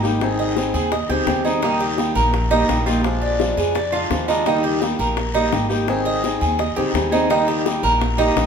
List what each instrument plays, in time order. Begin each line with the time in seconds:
Already playing: upright bass G#1
0.03 steel-string acoustic guitar G3 A#3 D#4 G4, short guiro
0.21 steel-string acoustic guitar D#3 C4 D#4 G#4, high bongo, long guiro
0.39 cuban tres D#5, high bongo
0.56 steel-string acoustic guitar C4 D#4 G#4, high bongo, short guiro
0.74 upright bass D#2, cuban tres G#4, high bongo, short guiro
0.92 cuban tres D#5, muted steel-string acoustic guitar stroke, high bongo, long guiro
1.09 upright bass D2, steel-string acoustic guitar G3 C4 D#4 G#4, cuban tres G4
1.27 upright bass D#2, steel-string acoustic guitar G3 C4 D#4 G#4, high bongo, low bongo, short guiro
1.45 steel-string acoustic guitar G3 C4 D#4 G#4, cuban tres D#4, high bongo, short guiro
1.62 steel-string acoustic guitar D#3 G3 A#3 D#4 G4, cuban tres D#4, high bongo, long guiro
1.80 cuban tres G4, high bongo
1.98 steel-string acoustic guitar G3 A#3 D#4 G4, high bongo, short guiro
2.15 upright bass A#1, cuban tres A#4, high bongo, short guiro
2.33 muted steel-string acoustic guitar stroke, high bongo, long guiro
2.51 steel-string acoustic guitar G3 A#3 D#4 G4, cuban tres D#4, high bongo
2.69 upright bass A#1, steel-string acoustic guitar G3 A#3 D#4 G4, high bongo, low bongo, short guiro
2.86 steel-string acoustic guitar G3 A#3 D#4 G4, cuban tres F4, short guiro
3.04 steel-string acoustic guitar F3 G#3 D4 F4, high bongo, long guiro
3.22 cuban tres D5, high bongo
3.40 steel-string acoustic guitar F3 G#3 D4 F4, high bongo, short guiro
3.57 upright bass F2, cuban tres G#4, high bongo, short guiro
3.75 cuban tres D5, muted steel-string acoustic guitar stroke, high bongo, long guiro
3.92 steel-string acoustic guitar G#3 D4 F4, cuban tres F4
4.10 upright bass D#2, steel-string acoustic guitar F3 G#3 D4 F4, high bongo, low bongo, short guiro
4.28 steel-string acoustic guitar G#3 D4 F4, cuban tres D#4, high bongo, short guiro
4.46 steel-string acoustic guitar D#3 G3 A#3 D#4 G4, cuban tres D#4, high bongo, long guiro
4.64 cuban tres G4, high bongo
4.81 steel-string acoustic guitar G3 A#3 D#4 G4, high bongo, short guiro
4.99 upright bass A#1, cuban tres A#4, high bongo, short guiro
5.17 muted steel-string acoustic guitar stroke, high bongo, long guiro
5.34 steel-string acoustic guitar G3 A#3 D#4 G4, cuban tres D#4, high bongo
5.52 upright bass G#1, steel-string acoustic guitar G3 A#3 D#4 G4, high bongo, low bongo, short guiro
5.69 steel-string acoustic guitar G3 A#3 D#4 G4, short guiro
5.88 steel-string acoustic guitar D#3 C4 D#4 G#4, high bongo, long guiro
6.06 cuban tres D#5, high bongo
6.24 steel-string acoustic guitar C4 D#4 G#4, high bongo, short guiro
6.41 upright bass D#2, cuban tres G#4, high bongo, short guiro
6.59 cuban tres D#5, muted steel-string acoustic guitar stroke, high bongo, long guiro
6.76 upright bass D2, steel-string acoustic guitar G3 C4 D#4 G#4, cuban tres G4
6.94 upright bass D#2, steel-string acoustic guitar G3 C4 D#4 G#4, high bongo, low bongo, short guiro
7.11 steel-string acoustic guitar G3 C4 D#4 G#4, cuban tres D#4, high bongo, short guiro
7.30 steel-string acoustic guitar D#3 G3 A#3 D#4 G4, cuban tres D#4, high bongo, long guiro
7.48 cuban tres G4, high bongo
7.65 steel-string acoustic guitar G3 A#3 D#4 G4, high bongo, short guiro
7.83 upright bass A#1, cuban tres A#4, high bongo, short guiro
8.01 muted steel-string acoustic guitar stroke, high bongo, long guiro
8.18 steel-string acoustic guitar G3 A#3 D#4 G4, cuban tres D#4
8.36 upright bass A#1, steel-string acoustic guitar G3 A#3 D#4 G4, high bongo, low bongo, short guiro